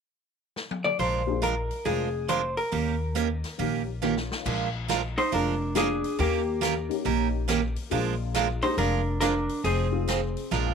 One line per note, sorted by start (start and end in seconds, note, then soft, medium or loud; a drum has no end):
0.56 snare medium
0.71 high tom medium
0.84 0.98 D5 loud
0.84 mid tom medium
0.99 1.68 A#1 medium
0.99 1.21 F3 medium
0.99 1.21 G#3 medium
0.99 1.21 D4 medium
0.99 1.21 F4 medium
0.99 1.22 A#4 medium
0.99 1.40 C5 medium
0.99 open hi-hat soft
1.26 1.40 A#3 medium
1.26 1.41 D4 medium
1.26 1.41 F4 medium
1.26 1.41 G#4 medium
1.42 1.54 F3 medium
1.42 1.54 G#3 medium
1.42 1.54 D4 medium
1.42 1.54 F4 medium
1.42 1.54 A#4 medium
1.42 closed hi-hat soft
1.71 open hi-hat soft
1.85 2.55 F1 medium
1.85 2.07 F3 medium
1.85 2.07 G#3 medium
1.85 2.08 D4 medium
1.85 2.08 F4 medium
1.85 2.30 G#4 medium
1.85 2.08 A#4 medium
1.85 open hi-hat soft
2.28 2.40 F3 medium
2.28 2.41 G#3 medium
2.28 2.41 D4 medium
2.28 2.41 F4 medium
2.28 2.41 A#4 medium
2.28 2.57 C5 medium
2.28 closed hi-hat soft
2.57 4.26 A#4 medium
2.57 open hi-hat soft
2.72 3.42 D#2 medium
2.72 2.94 D#3 medium
2.72 2.94 A#3 medium
2.72 2.94 C#4 medium
2.72 2.94 G4 medium
2.72 2.94 A#4 medium
2.72 open hi-hat soft
3.15 3.27 D#3 medium
3.15 3.27 A#3 medium
3.15 3.27 C#4 medium
3.15 3.27 G4 medium
3.15 3.27 A#4 medium
3.15 closed hi-hat soft
3.44 snare soft
3.44 open hi-hat soft
3.58 4.28 A#1 medium
3.58 3.81 D#3 medium
3.58 3.83 A#3 soft
3.58 3.81 A#3 medium
3.58 3.84 C#4 soft
3.58 3.81 C#4 medium
3.58 3.84 D#4 soft
3.58 3.84 G4 medium
3.58 3.81 G4 medium
3.58 3.81 A#4 medium
3.58 open hi-hat soft
4.02 4.14 D#3 medium
4.02 4.45 A#3 medium
4.02 4.14 A#3 medium
4.02 4.14 C#4 medium
4.02 4.46 C#4 medium
4.02 4.46 D#4 medium
4.02 4.46 F4 medium
4.02 4.14 G4 medium
4.02 4.14 A#4 medium
4.02 snare soft
4.17 snare medium
4.31 snare medium
4.45 5.15 A#1 medium
4.45 4.67 F3 medium
4.45 4.68 G#3 medium
4.45 4.68 D4 medium
4.45 4.68 F4 medium
4.45 4.68 A#4 medium
4.45 kick medium
4.45 crash medium
4.88 5.00 F3 medium
4.88 5.00 G#3 medium
4.88 5.01 D4 medium
4.88 5.01 F4 medium
4.88 5.01 A#4 medium
4.88 snare medium
4.88 closed hi-hat medium
5.18 5.31 D#4 medium
5.18 5.32 C5 medium
5.18 open hi-hat soft
5.32 6.01 F1 medium
5.32 5.54 F3 medium
5.32 5.54 G#3 medium
5.32 5.54 D4 medium
5.32 5.54 F4 medium
5.32 5.54 A#4 medium
5.32 open hi-hat soft
5.75 5.87 F3 medium
5.75 5.87 G#3 medium
5.75 6.00 A#3 medium
5.75 6.00 D4 medium
5.75 5.87 D4 medium
5.75 6.00 F4 medium
5.75 5.87 F4 medium
5.75 6.01 G#4 medium
5.75 6.16 G#4 medium
5.75 5.87 A#4 medium
5.75 snare medium
5.75 closed hi-hat medium
6.04 open hi-hat soft
6.19 6.88 D#2 medium
6.19 6.40 D#3 medium
6.19 6.40 A#3 medium
6.19 6.41 C#4 medium
6.19 6.41 G4 medium
6.19 6.41 A#4 medium
6.19 open hi-hat soft
6.61 6.73 D#3 medium
6.61 6.73 A#3 medium
6.61 6.73 C#4 medium
6.61 6.73 G4 medium
6.61 6.73 A#4 medium
6.61 snare medium
6.61 closed hi-hat medium
6.89 7.45 A#3 medium
6.89 7.45 C#4 medium
6.89 7.45 D#4 medium
6.89 7.45 G4 medium
6.89 open hi-hat soft
7.05 7.74 A#1 medium
7.05 7.27 D#3 medium
7.05 7.27 A#3 medium
7.05 7.27 C#4 medium
7.05 7.27 G4 medium
7.05 7.27 A#4 medium
7.05 open hi-hat soft
7.48 7.60 D#3 medium
7.48 7.60 A#3 medium
7.48 7.60 C#4 medium
7.48 7.60 G4 medium
7.48 7.60 A#4 medium
7.48 snare medium
7.48 closed hi-hat medium
7.76 open hi-hat soft
7.90 8.61 A#1 medium
7.90 8.13 F3 medium
7.90 8.56 G#3 medium
7.90 8.13 G#3 medium
7.90 8.57 A#3 medium
7.90 8.57 D4 medium
7.90 8.14 D4 medium
7.90 8.57 F4 medium
7.90 8.14 F4 medium
7.90 8.14 A#4 medium
7.90 open hi-hat soft
8.34 8.46 F3 medium
8.34 8.46 G#3 medium
8.34 8.47 D4 medium
8.34 8.47 F4 medium
8.34 8.47 A#4 medium
8.34 snare medium
8.34 closed hi-hat medium
8.62 8.76 G#3 medium
8.62 8.77 A#3 medium
8.62 8.77 D4 medium
8.62 8.77 D#4 medium
8.62 8.77 G4 medium
8.62 8.77 C5 medium
8.62 open hi-hat soft
8.77 9.47 F1 medium
8.77 9.00 F3 medium
8.77 9.00 G#3 medium
8.77 9.00 D4 medium
8.77 9.00 F4 medium
8.77 9.00 A#4 medium
8.77 open hi-hat soft
9.21 9.33 F3 medium
9.21 9.33 G#3 medium
9.21 9.33 D4 medium
9.21 9.33 F4 medium
9.21 9.33 A#4 medium
9.21 snare medium
9.21 closed hi-hat medium
9.49 open hi-hat soft
9.64 10.34 F1 medium
9.64 9.86 F3 medium
9.64 9.87 C4 medium
9.64 9.87 D#4 medium
9.64 9.87 G#4 medium
9.64 open hi-hat medium
9.91 10.06 G#3 medium
9.91 10.06 C4 medium
9.91 10.06 D#4 medium
9.91 10.06 F4 medium
10.08 10.19 F3 medium
10.08 10.20 C4 medium
10.08 10.20 D#4 medium
10.08 10.20 G#4 medium
10.08 snare medium
10.08 closed hi-hat medium
10.37 open hi-hat soft
10.51 10.74 A#1 medium
10.51 10.73 F3 medium
10.51 10.73 G#3 medium
10.51 10.73 D4 medium
10.51 10.74 F4 medium
10.51 10.74 A#4 medium
10.51 snare soft
10.66 floor tom medium